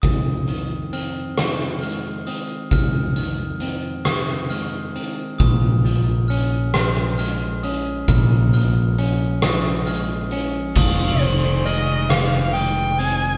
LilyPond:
<<
  \new Staff \with { instrumentName = "Glockenspiel" } { \time 6/8 \key f \minor \tempo 4. = 45 ees'''4 f'''4 f'''8 ees'''8 | f'''8 f'''4 ees'''8 f'''4 | ees'''4 f'''4 f'''8 ees'''8 | f'''8 f'''4 ees'''8 f'''4 |
ees'''4 f'''4 ees'''8 ees'''8 | }
  \new Staff \with { instrumentName = "Violin" } { \time 6/8 \key f \minor r2. | r2. | r2. | r2. |
f''8 c''8 ees''8 f''8 g''8 aes''8 | }
  \new Staff \with { instrumentName = "Clean electric guitar" } { \clef bass \time 6/8 \key f \minor f,8 ees8 c'8 ees8 aes8 c'8 | f,8 ees8 c'8 ees8 aes8 c'8 | bes,8 f8 des'8 f8 aes8 des'8 | bes,8 f8 des'8 f8 aes8 des'8 |
f,8 ees8 aes8 ees8 aes8 c'8 | }
  \new Staff \with { instrumentName = "Picked electric bass" } { \clef bass \time 6/8 \key f \minor r2. | r2. | bes,,2. | bes,,2. |
f,,2. | }
  \new DrumStaff \with { instrumentName = "Drums" } \drummode { \time 6/8 <hh bd>8 hh8 hh8 <hh ss>8 hh8 hh8 | <hh bd>8 hh8 hh8 <hh ss>8 hh8 hh8 | <hh bd>8 hh8 hh8 <hh ss>8 hh8 hh8 | <hh bd>8 hh8 hh8 <hh ss>8 hh8 hh8 |
<cymc bd>8 hh8 hh8 <hh ss>8 hh8 hh8 | }
>>